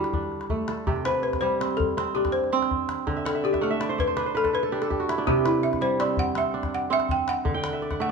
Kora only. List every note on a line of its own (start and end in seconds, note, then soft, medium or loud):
0.00 0.92 D3 medium
0.00 0.92 G3 medium
0.00 0.97 E4 medium
0.13 1.81 D4 medium
0.50 2.50 A3 medium
0.69 2.00 A4 medium
0.87 3.12 C3 medium
0.87 2.28 G4 medium
1.06 1.66 B4 medium
1.42 3.12 G3 medium
1.60 1.97 C4 medium
1.97 2.52 C4 medium
2.16 3.84 D4 medium
2.53 4.23 C4 medium
3.07 5.32 D3 medium
3.17 3.34 E5 medium
3.25 3.61 F#5 medium
3.35 3.52 E5 medium
3.44 3.80 D5 medium
3.53 3.70 E5 medium
3.61 5.61 A3 medium
3.61 4.58 F#5 medium
3.71 4.74 E5 medium
3.80 3.98 D5 medium
3.89 4.07 C5 medium
3.98 5.09 D5 medium
4.07 4.26 C5 medium
4.17 4.72 D4 medium
4.17 4.34 B4 medium
4.26 4.59 C5 medium
4.35 4.53 B4 medium
4.44 4.62 A4 medium
4.53 5.33 B4 medium
4.63 4.81 A4 medium
4.72 5.18 D4 medium
4.72 4.90 G4 medium
4.82 6.13 A4 medium
4.90 5.27 G4 medium
5.00 5.33 F#4 medium
5.09 6.66 E4 medium
5.18 6.54 D4 medium
5.27 7.51 C3 medium
5.27 6.69 G4 medium
5.45 6.05 B4 medium
5.81 7.51 G3 medium
5.99 6.36 C4 medium
6.36 6.90 C4 medium
6.54 8.12 D4 medium
6.90 8.12 C4 medium
7.45 8.12 D3 medium
7.54 7.97 G5 medium
7.63 7.91 F#5 medium
7.73 8.00 E5 medium
7.82 8.09 D5 medium
7.91 8.12 F#5 medium
8.00 8.12 A3 medium
8.00 8.12 E5 medium